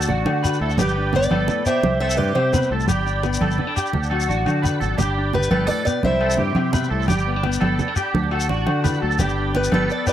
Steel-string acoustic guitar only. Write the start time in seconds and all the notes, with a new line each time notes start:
0.79 G4 B4
1.15 B4 D5
1.66 C5 E5
2.00 C5 E5
2.17 B4 D5
2.35 G4 C5
4.98 D4 G4
5.34 G4 B4
5.51 G4 B4
5.67 B4 D5
5.85 B4 D5
6.04 C5 E5
9.20 D4 G4
9.55 G4 B4
9.73 G4 B4
9.91 B4 D5
10.08 B4 D5